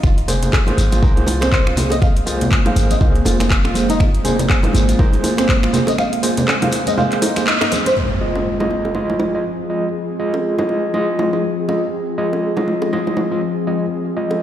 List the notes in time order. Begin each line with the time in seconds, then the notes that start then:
0.03 F1 G#3 A#3 C4 F4, finger snap, kick, high conga, shekere
0.18 closed hi-hat
0.28 A#3 G#4 C5, open hi-hat, muted conga, low conga, shekere
0.43 closed hi-hat, low conga, shekere
0.53 G#4, kick, clap, high bongo
0.67 A#3 F4 G#4 C5, closed hi-hat, low bongo, high conga
0.77 G#1, open hi-hat, low bongo, muted conga, shekere
0.92 F4, closed hi-hat, high conga, shekere
1.02 C2 A#3 G#4 A#4 C5, kick, low bongo, shekere
1.17 closed hi-hat, low bongo, muted conga
1.26 F4, open hi-hat, low bongo, high conga, shekere
1.41 A#3 C4 G#4 C5, finger snap, closed hi-hat, high bongo, shekere
1.52 C5, kick, clap, muted conga, shekere
1.66 F4, finger snap, high conga
1.77 A#3 G#4 C5, open hi-hat, low conga, shekere
1.90 D#5, closed hi-hat, high bongo, muted conga, shekere
2.02 F5, finger snap, kick, shekere
2.17 closed hi-hat
2.26 A#3 F4 G#4 C5, open hi-hat, muted conga, shekere
2.41 closed hi-hat, low conga, shekere
2.51 G#4, kick, clap, shekere
2.66 A#3 G#4 C5 F5, closed hi-hat, low bongo, high conga
2.76 G#1, open hi-hat, low bongo, shekere
2.90 D#5, closed hi-hat, high conga, shekere
3.01 C2 A#3 G#4 C5 F5, kick, low bongo, low conga, shekere
3.15 closed hi-hat, muted conga
3.25 F1 F4, open hi-hat, high bongo, low bongo, shekere
3.40 A#3 G#4 C5, finger snap, closed hi-hat, low bongo, high conga, shekere
3.50 G#4, kick, clap, muted conga
3.64 F4, finger snap, high bongo
3.74 A#3 G#4 C5, open hi-hat, high conga, shekere
3.89 D#4, closed hi-hat, muted conga, shekere
4.00 F4, finger snap, kick, high conga, shekere
4.15 closed hi-hat
4.25 A#3 G#4 C5, open hi-hat, muted conga, low conga, shekere
4.39 closed hi-hat, low conga, shekere
4.49 G#4, kick, clap, high bongo, shekere
4.63 A#3 F4 G#4 C5, closed hi-hat, low bongo, high conga
4.73 G#1, open hi-hat, low bongo, muted conga, shekere
4.89 F4, closed hi-hat, high conga, shekere
4.99 A#3 G#4 A#4 C5, kick, low bongo, shekere
5.13 closed hi-hat, low bongo, muted conga
5.24 F4, open hi-hat, low bongo, high conga, shekere
5.37 A#3 C4 G#4 C5, finger snap, closed hi-hat, high bongo, shekere
5.49 C5, kick, clap, muted conga, shekere
5.63 F4, finger snap, high conga
5.73 A#3 G#4 C5, open hi-hat, low conga, shekere
5.87 D#5, closed hi-hat, high bongo, muted conga, shekere
5.98 F5, finger snap, high conga, shekere
6.13 closed hi-hat
6.23 A#3 F4 G#4 C5, open hi-hat, muted conga, shekere
6.37 closed hi-hat, low conga, shekere
6.48 G#4, clap, high bongo, shekere
6.62 A#3 G#4 C5 F5, closed hi-hat, low bongo, high conga, low conga
6.72 open hi-hat, low bongo, muted conga, shekere
6.87 D#5, closed hi-hat, high conga, shekere
6.98 A#3 G#4 C5 F5, low bongo, low conga, shekere
7.12 clap, closed hi-hat, muted conga
7.22 D#4, open hi-hat, high bongo, low bongo, shekere
7.36 A#3 G#4 C5, finger snap, closed hi-hat, low bongo, high conga, shekere
7.47 D#4, clap, muted conga
7.61 D#4, finger snap, closed hi-hat, high bongo
7.72 A#3 G#4 C5, open hi-hat, high conga, shekere
7.86 C5, closed hi-hat, muted conga, shekere
7.97 F3 C4 F4 G#4, impact
8.21 G#3 F4 D#5
8.36 high bongo
8.60 G#3 F4 D#5, high bongo, low bongo
8.71 low bongo
8.85 high bongo
8.95 G#3 F4 D#5, low bongo
9.10 low bongo
9.20 low bongo
9.35 G#3 F4 D#5
9.70 G#3 F4 D#5
10.20 G#3 F4 D#5
10.34 high bongo
10.59 G#3 F4 D#5, high bongo, low bongo
10.69 low bongo
10.94 G#3 F4 D#5, low bongo
11.19 low bongo
11.33 G#3 F4 D#5, low bongo
11.68 G#3 F4 D#5, high bongo
12.18 G#3 F4 D#5
12.33 high bongo
12.57 G#3 F4 D#5, high bongo, low bongo
12.68 low bongo
12.82 high bongo
12.93 G#3 F4 D#5, low bongo
13.07 low bongo
13.17 low bongo
13.32 G#3 F4 D#5
13.67 G#3 F4 D#5
14.17 G#3 F4 D#5
14.31 high bongo